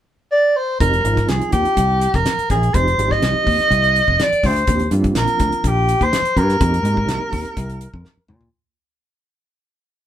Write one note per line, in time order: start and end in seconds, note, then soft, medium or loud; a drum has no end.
0.32 0.58 D5 medium
0.56 0.80 C5 medium
0.80 1.00 F1 medium
0.80 0.97 F3 medium
0.80 0.98 G#3 medium
0.80 0.98 C4 medium
0.80 0.98 D#4 medium
0.80 0.98 G4 medium
0.80 1.30 A#4 medium
0.80 kick medium
0.80 closed hi-hat medium
0.93 closed hi-hat soft
1.04 1.24 G#1 medium
1.04 1.73 F3 medium
1.04 1.73 G#3 medium
1.04 1.72 C4 medium
1.04 1.72 D#4 medium
1.04 1.73 F4 medium
1.04 closed hi-hat medium
1.17 kick medium
1.17 snare soft
1.17 closed hi-hat soft
1.28 1.39 C2 medium
1.28 1.52 G#4 medium
1.28 snare loud
1.28 closed hi-hat medium
1.41 muted fingered electric bass stroke soft
1.41 closed hi-hat soft
1.52 1.63 D#2 medium
1.52 2.16 G4 medium
1.52 kick medium
1.52 closed hi-hat medium
1.65 closed hi-hat soft
1.77 2.06 C2 loud
1.77 kick medium
1.77 closed hi-hat medium
2.01 closed hi-hat medium
2.14 2.23 F1 medium
2.14 2.50 A#4 medium
2.14 kick medium
2.14 snare soft
2.14 closed hi-hat soft
2.26 snare medium
2.26 closed hi-hat medium
2.38 muted fingered electric bass stroke soft
2.38 closed hi-hat soft
2.50 2.69 A#1 medium
2.50 2.76 G#4 medium
2.50 kick medium
2.50 snare soft
2.50 closed hi-hat medium
2.63 closed hi-hat soft
2.74 2.94 F1 medium
2.74 2.92 F3 medium
2.74 2.92 G#3 medium
2.74 2.92 C4 medium
2.74 2.92 D#4 medium
2.74 2.92 G4 medium
2.74 3.13 C5 medium
2.74 kick loud
2.74 closed hi-hat medium
2.88 closed hi-hat soft
2.98 3.17 G#1 medium
2.98 3.66 F3 medium
2.98 3.66 G#3 medium
2.98 3.66 C4 medium
2.98 3.66 D#4 medium
2.98 3.66 G4 medium
2.98 closed hi-hat medium
3.11 4.24 D#5 loud
3.11 kick medium
3.11 snare soft
3.22 3.33 C2 medium
3.22 snare medium
3.22 closed hi-hat medium
3.36 muted fingered electric bass stroke soft
3.46 3.56 D#2 medium
3.46 kick medium
3.46 open hi-hat medium
3.60 snare soft
3.60 closed hi-hat soft
3.70 4.00 C2 medium
3.70 kick medium
3.70 closed hi-hat medium
3.84 closed hi-hat soft
3.96 closed hi-hat medium
4.08 4.17 F1 medium
4.08 kick medium
4.20 4.47 D5 medium
4.20 snare loud
4.20 closed hi-hat medium
4.32 muted fingered electric bass stroke soft
4.32 closed hi-hat soft
4.43 4.63 D2 medium
4.43 4.90 C5 medium
4.43 kick medium
4.43 open hi-hat medium
4.56 closed hi-hat soft
4.67 4.87 D#2 medium
4.67 4.85 F3 medium
4.67 4.85 A#3 medium
4.67 4.85 C4 medium
4.67 4.85 D4 medium
4.67 4.85 G4 medium
4.67 kick loud
4.67 closed hi-hat medium
4.79 closed hi-hat soft
4.91 5.11 G2 medium
4.91 5.59 F3 medium
4.91 5.59 A#3 medium
4.91 5.59 C4 medium
4.91 5.59 D4 medium
4.91 5.59 F4 medium
4.91 closed hi-hat medium
5.04 kick medium
5.04 closed hi-hat soft
5.15 5.25 A#1 medium
5.15 5.69 A#4 medium
5.15 snare loud
5.15 closed hi-hat medium
5.27 muted fingered electric bass stroke soft
5.27 closed hi-hat soft
5.39 5.50 D2 medium
5.39 kick medium
5.39 snare soft
5.39 closed hi-hat medium
5.52 closed hi-hat soft
5.64 5.93 A#1 medium
5.64 6.05 G4 medium
5.64 kick medium
5.64 closed hi-hat medium
5.89 closed hi-hat medium
6.01 6.10 D#2 medium
6.01 6.39 C5 loud
6.01 kick medium
6.01 closed hi-hat soft
6.13 snare loud
6.13 closed hi-hat medium
6.22 muted fingered electric bass stroke soft
6.22 closed hi-hat soft
6.36 6.56 G2 medium
6.36 8.30 A#4 medium
6.36 kick medium
6.36 closed hi-hat medium
6.50 snare soft
6.50 closed hi-hat soft
6.61 6.80 F2 medium
6.61 6.77 G#3 medium
6.61 6.78 A#3 medium
6.61 6.78 C4 medium
6.61 6.78 D#4 medium
6.61 6.78 G4 medium
6.61 kick loud
6.61 closed hi-hat medium
6.74 closed hi-hat soft
6.83 7.03 G#2 medium
6.83 7.52 G#3 medium
6.83 7.52 A#3 medium
6.83 7.52 C4 medium
6.83 7.52 D#4 medium
6.83 7.52 G4 medium
6.83 closed hi-hat medium
6.97 kick medium
7.06 7.17 C2 medium
7.06 snare medium
7.06 closed hi-hat medium
7.20 muted fingered electric bass stroke soft
7.32 7.42 D#2 medium
7.32 kick medium
7.32 open hi-hat medium
7.45 closed hi-hat soft
7.57 7.86 C2 medium
7.57 kick medium
7.57 closed hi-hat medium
7.69 closed hi-hat soft
7.81 closed hi-hat medium
7.94 8.03 F2 medium
7.94 kick medium
8.05 snare medium
8.17 muted fingered electric bass stroke soft
8.28 8.48 A#2 medium
8.28 mid tom medium
8.41 floor tom medium